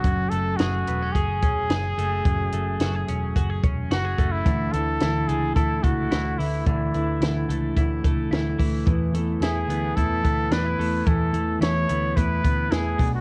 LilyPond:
<<
  \new Staff \with { instrumentName = "Trumpet" } { \time 4/4 \key e \mixolydian \tempo 4 = 109 fis'8 a'8 fis'4 gis'2~ | gis'2~ gis'8 r8 fis'8. e'16~ | e'8 a'4 gis'8 a'8 fis'4 e'8 | e'4. r2 r8 |
r4 gis'4 a'4 b'4 | a'4 cis''4 b'4 gis'8. fis'16 | }
  \new Staff \with { instrumentName = "Clean electric guitar" } { \time 4/4 \key e \mixolydian fis,8 a8 gis'8 b16 cis'16 gis'8 cis'8 gis'8 a8 | fis,8 a8 fis'16 gis'16 cis'8 fis'16 gis'16 cis'8 fis'16 gis'16 a8 | d8 e8 e'8 a8 e'8 a8 e'8 e8 | d8 e8 e'8 a8 e'8 a8 e'8 e8 |
e8 a8 e'8 b8 e'8 b8 d'16 e'16 a8 | e8 a8 e'8 b8 e'8 b8 e'8 b,8 | }
  \new Staff \with { instrumentName = "Clean electric guitar" } { \time 4/4 \key e \mixolydian r1 | r1 | <d e a e'>8 <e a e'>8 <d e a e'>8 <e a e'>8 <d e a e'>8 <e a e'>8 <d e a e'>8 <e a e'>8 | <d e a e'>8 <e a e'>8 <d e a e'>8 <e a e'>8 <d e a e'>8 <e a e'>8 <d e a e'>8 <e a e'>8 |
<e a b e'>8 <a b e'>8 <e a b e'>8 <a b e'>8 <e a b e'>8 <a b e'>8 <e a b e'>8 <a b e'>8 | <e a b e'>8 <a b e'>8 <e a b e'>8 <a b e'>8 <e a b e'>8 <a b e'>8 <e a b e'>8 <a d' fis'>8 | }
  \new Staff \with { instrumentName = "Picked electric bass" } { \clef bass \time 4/4 \key e \mixolydian fis,,8 fis,,8 fis,,8 e,,8 fis,,8 e,,8 fis,,8 fis,,8 | fis,,8 fis,,8 fis,,8 e,,8 fis,,8 e,,8 fis,,8 fis,,8 | d,8 d,8 d,8 cis,8 d,8 cis,8 d,8 d,8 | d,8 d,8 d,8 cis,8 d,8 cis,8 d,8 d,8 |
e,8 e,8 e,8 d,8 e,8 d,8 e,8 e,8 | e,8 e,8 e,8 d,8 e,8 d,8 e,8 b,,8 | }
  \new DrumStaff \with { instrumentName = "Drums" } \drummode { \time 4/4 <hh bd>8 hh8 <hh sn>8 hh8 <hh bd>8 <hh bd>8 <hh sn>8 hh8 | <hh bd>8 hh8 <hh sn>8 hh8 <hh bd>8 <hh bd>8 <hh sn>8 <hh bd>8 | <hh bd>8 hh8 <hh sn>8 hh8 <hh bd>8 <hh bd>8 <hh sn>8 hho8 | <hh bd>8 hh8 <hh sn>8 hh8 <hh bd>8 <hh bd>8 <hh sn>8 <hho bd>8 |
<hh bd>8 hh8 <hh sn>8 hh8 <hh bd>8 <hh bd>8 <hh sn>8 hho8 | <hh bd>8 hh8 <hh sn>8 hh8 <hh bd>8 <hh bd>8 <hh sn>8 <hho bd>8 | }
>>